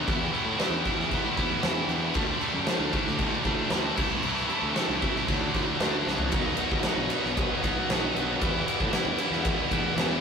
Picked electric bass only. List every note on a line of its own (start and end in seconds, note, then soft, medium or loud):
0.08 0.28 E2 loud
0.45 0.55 A2 medium
0.69 0.81 E2 loud
0.97 1.17 E2 medium
1.36 1.57 E2 medium
1.62 1.83 E2 loud
1.88 2.08 E2 medium
2.15 2.35 D2 loud
2.54 2.64 F#2 medium
2.79 2.90 D2 loud
3.07 3.27 D2 medium
3.45 3.65 D2 medium
3.71 3.91 D2 loud
3.97 4.18 C2 medium
4.24 4.44 C2 loud
4.62 4.72 D2 medium
4.88 4.99 C2 medium
5.16 5.26 C2 medium
5.28 5.48 D2 loud
5.54 5.74 D2 medium
5.81 6.04 D2 medium
6.07 6.30 C2 medium
6.32 6.52 B1 loud
6.71 6.81 D#2 medium
6.98 7.08 B1 loud
7.24 7.44 B1 medium
7.63 7.83 B1 loud
7.89 8.09 B1 loud
8.14 8.35 B1 medium
8.41 8.61 E2 loud
8.80 8.90 A2 medium
9.05 9.15 E2 loud
9.30 9.51 E2 medium
9.71 9.91 E2 medium
9.95 10.16 E2 loud